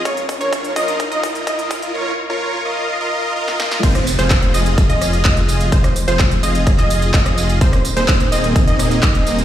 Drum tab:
CC |----------------|----------------|x---------------|----------------|
HH |xxoxxxoxxxoxxxox|----------------|xxoxxxoxxxoxxxox|xxoxxxoxxxoxxxox|
TB |----------------|----------------|xxxxxxxxxxxxxxxx|xxxxxxxxxxxxxxxx|
CP |----------------|----------------|----x-------x---|----x----x--x---|
SD |----------------|-------------ooo|-r--------r-----|-r------r----r--|
BD |o-o-o-o-o-o-o-o-|----------------|o---o---o---o---|o---o---o---o---|

CC |----------------|
HH |xxoxxxoxxxoxxxox|
TB |xxxxxxxxxxxxxxxx|
CP |----x-------x---|
SD |-r--------r-----|
BD |o---o---o---o---|